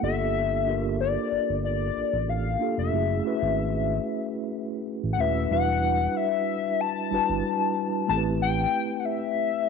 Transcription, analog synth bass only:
0.03 G1
1.32 G1
1.49 G1
1.96 A1
2.13 A1
2.28 A1
2.78 F1
2.93 F#1
3.42 G#1
5.03 A1
5.18 D#1
5.51 E1
7.12 G1
7.30 G1
8.09 A1

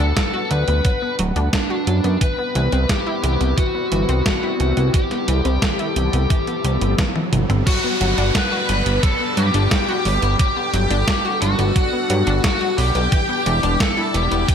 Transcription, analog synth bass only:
0.00 D2
0.51 D2
0.68 D2
1.19 D1
1.36 D2
1.87 F#2
2.04 F#2
2.55 C2
2.73 C2
3.24 C2
3.41 C2
3.92 G1
4.09 C2
4.60 C2
4.77 C2
5.28 C2
5.45 C2
5.96 C2
6.13 C2
6.64 C2
6.81 G1
7.33 G1
7.50 G1
8.01 G1
8.18 G1
8.69 G1
8.86 G1
9.37 G2
9.54 G1
10.05 G1
10.22 G1
10.73 G1
10.90 G1
11.42 G1
11.59 G1
12.10 G2
12.27 G1
12.78 B1
12.95 B1
13.46 E1
13.63 E1
14.14 E1
14.31 E1

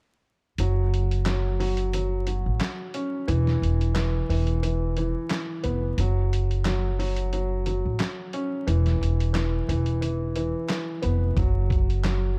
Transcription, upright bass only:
0.58 F#1
2.46 A1
3.28 E1
3.62 E1
4.29 E1
5.64 F1
5.98 F#1
7.85 A1
8.67 E1
9.01 E1
9.69 E1
11.03 F1
11.37 F#1

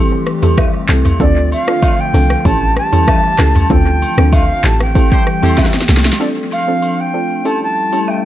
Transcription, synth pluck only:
Already playing: C4 E4 G4 A4
0.43 C4 E4 G4 A4
0.89 C4 E4 G4 A4
1.20 C4 D4 F4 A4
1.68 C4 D4 F4 A4
2.14 C4 D4 F4 A4
2.45 C#4 E4 G4 A4
2.92 C#4 E4 G4 A4
3.39 C#4 E4 G4 A4
3.70 C4 D4 F4 A4
4.18 C4 D4 F4 A4
4.64 C4 E4 G4 A4
4.95 C4 E4 G4 A4
5.42 C4 E4 G4 A4
6.20 C4 D4 F4 A4
6.67 C4 D4 F4 A4
7.14 C4 D4 F4 A4
7.45 C#4 E4 G4 A4
7.92 C#4 E4 G4 A4

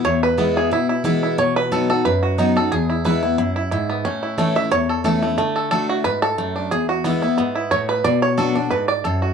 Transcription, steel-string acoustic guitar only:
0.05 E2
0.37 E3 G#3 B3 E4
0.71 B2
1.04 E3 G#3 B3 E4
1.38 B2
1.71 F#3 B3 D#4 F#4
1.89 D#4 F#4
2.05 F#2
2.38 F#3 B3 D#4 F#4
2.56 D#4 F#4
2.72 E2
3.05 E3 G#3 B3 E4
3.22 B3 E4
3.38 F#2
3.72 G#2
4.05 A2
4.38 E3 A3 C#4 E4
4.55 C#4 E4
4.71 E2
5.04 E3 A3 C#4 E4
5.22 C#4 E4
5.38 D3
5.71 D3 A3 D4 F#4
6.05 G#2
6.38 F#2
6.72 E2
7.04 E3 G#3 B3 E4
7.22 B3 E4
7.38 G#2
7.71 A2
8.04 B2
8.37 F#3 B3 D4 F#4
8.55 D4 F#4
8.71 G#2
9.05 F#2

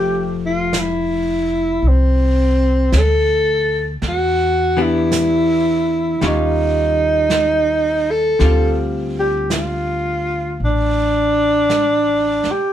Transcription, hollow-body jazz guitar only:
Already playing: F3 A3 G4
4.77 E3 B3 D4 G4
6.22 D#3 G3 C#4 F4
8.39 D3 G3 C4
8.44 F4

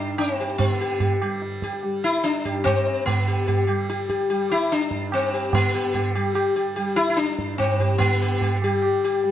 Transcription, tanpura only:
Already playing: G2 D3 G3
0.59 D3
1.22 G3
1.83 G3
2.44 G2
3.04 D3
3.67 G3
4.31 G3
4.91 G2
5.54 D3
6.15 G3
6.77 G3
7.39 G2
8.00 D3
8.62 G3
9.24 G3

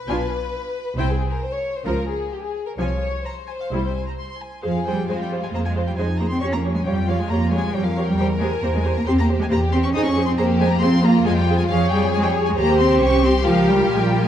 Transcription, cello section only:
0.08 B2
0.97 C3
1.85 C#3
2.78 C3
3.72 C3
4.65 F3
4.87 G3
5.09 G#3
5.20 G3
5.43 G#3
5.53 A#3
5.65 G#3
5.87 G3
5.98 G#3
6.20 A#3
6.31 C4
6.43 C#4
6.54 A#3
6.75 G#3
6.86 G3
7.08 F3
7.19 G#3
7.30 A#3
7.52 G#3
7.74 G3
7.86 F3
8.08 G3
8.19 G3
8.41 G#3
8.63 A#3
8.74 G#3
8.96 A#3
9.08 C4
9.18 A#3
9.40 G#3
9.50 A#3
9.72 C4
9.84 C#4
9.94 D#4
10.05 C#4
10.27 C4
10.38 A#3
10.60 G#3
10.71 A#3
10.82 C4
11.04 A#3
11.26 G#3
11.38 G3
11.59 G#3
11.70 F3
11.92 G3
12.15 G#3
12.26 G3
12.48 G#3
12.59 A#3
12.80 C4
13.02 C#4
13.23 C4
13.45 F3
13.67 G3
13.89 G#3
14.01 G3
14.23 G#3

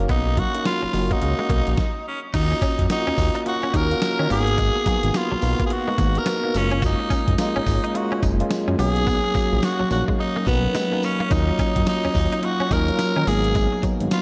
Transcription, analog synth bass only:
0.09 B1
0.83 F#1
0.94 F#1
1.22 C#2
1.50 B1
1.68 A#1
2.34 D#2
2.79 F#2
3.08 D#2
3.18 D#2
3.74 D#2
4.20 D#3
4.30 G#1
5.04 G#1
5.32 B1
5.43 B1
5.98 G#1
6.55 F#1
7.28 F#1
7.57 G#1
7.67 G#1
8.23 F#1
8.68 F#2
8.79 B1
9.52 A#1
9.80 A#1
9.91 A#1
10.47 B1
11.31 D#2
11.76 F#2
12.05 D#2
12.15 D#2
12.71 D#2
13.16 D#3
13.27 G#1
14.01 G#1

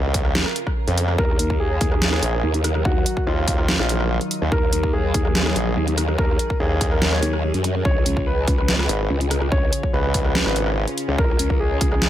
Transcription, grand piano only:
1.18 A#4
1.60 G#4
1.92 G#4
2.13 G#4
2.85 F#4
3.27 F4
3.58 F4
3.79 F4
4.52 A#4
4.93 G#4
5.25 G#4
5.46 G#4
6.18 A#4
6.60 G#4
6.92 A#4
7.13 C#5
7.85 C#5
8.27 B4
8.58 B4
8.79 B4
9.52 C#5
9.93 B4
10.25 B4
10.46 B4
11.18 A#4
11.60 G#4
11.92 G#4

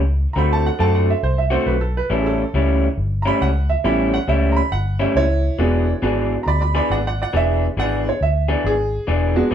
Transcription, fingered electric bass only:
Already playing: C#2
0.36 D2
0.79 F#2
1.23 C2
1.66 B1
2.10 A1
2.54 C#2
2.97 G1
3.41 C#2
3.84 A1
4.28 C#2
4.72 G1
5.15 C#2
5.58 E1
6.02 G#1
6.46 D2
6.90 G#1
7.33 E1
7.77 G#1
8.21 D2
8.64 G#1
9.08 E1
9.51 G#1

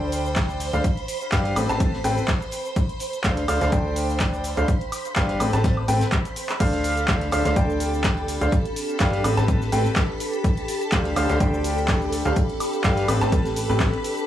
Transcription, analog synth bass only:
Already playing: D2
0.73 D2
1.32 G2
1.56 A1
1.69 A1
2.04 A1
3.24 D2
3.48 D2
3.61 D2
3.72 D2
4.57 D2
5.16 G1
5.40 A1
5.53 A1
5.88 A1
6.60 D2
7.08 D2
7.32 D2
7.45 D2
7.56 D2
8.41 D2
9.00 G2
9.24 A1
9.37 A1
9.72 A1
10.92 D2
11.16 D2
11.29 D2
11.40 D2
12.25 D2
12.84 G2
13.08 A1
13.21 A1
13.69 A1

